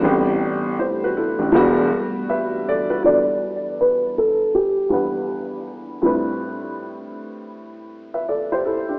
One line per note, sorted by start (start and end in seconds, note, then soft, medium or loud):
0.00 1.52 C3 medium
0.00 1.50 G3 medium
0.00 1.52 A3 medium
0.00 1.05 B3 medium
0.00 1.05 C4 medium
0.00 0.79 D4 medium
0.04 0.75 A1 loud
0.04 0.79 G4 medium
0.79 1.00 G4 soft
0.79 1.00 C5 medium
1.04 1.17 F#4 medium
1.04 1.17 B4 medium
1.17 1.38 E4 medium
1.17 1.38 A4 medium
1.38 1.53 A1 medium
1.38 1.54 D4 medium
1.38 1.74 G4 medium
1.52 1.89 E1 loud
1.52 3.03 E3 medium
1.52 2.46 G3 medium
1.52 3.03 G3 medium
1.52 2.46 B3 medium
1.52 3.03 B3 medium
1.52 2.47 D4 medium
1.52 3.03 D4 medium
1.52 3.03 F#4 medium
1.56 2.30 F#4 loud
2.29 2.65 B4 medium
2.29 2.65 E5 medium
2.69 2.88 A4 medium
2.69 2.88 D5 medium
2.90 3.05 F#4 medium
2.90 3.25 B4 medium
3.03 4.06 E2 medium
3.03 4.06 G3 medium
3.03 4.07 B3 medium
3.03 4.07 D4 medium
3.03 4.07 F#4 medium
3.03 4.08 A4 medium
3.03 3.82 D5 loud
3.81 4.18 B4 medium
4.18 4.56 A4 medium
4.55 5.63 G4 medium
4.89 5.65 E2 medium
4.89 5.66 G3 medium
4.89 5.66 B3 medium
4.89 5.67 D4 medium
4.89 5.67 F#5 medium
4.93 5.67 B4 medium
6.02 7.05 A2 medium
6.02 7.05 G3 medium
6.02 7.06 C4 medium
6.02 7.07 D4 medium
6.02 7.07 E4 medium
6.06 7.07 B4 medium
8.14 8.29 B4 soft
8.14 8.29 E5 medium
8.29 8.50 A4 medium
8.29 8.50 D5 medium
8.52 8.67 G4 medium
8.52 8.66 C5 medium
8.66 8.87 E4 medium
8.66 8.87 A4 medium
8.89 8.99 D4 medium
8.89 8.99 G4 medium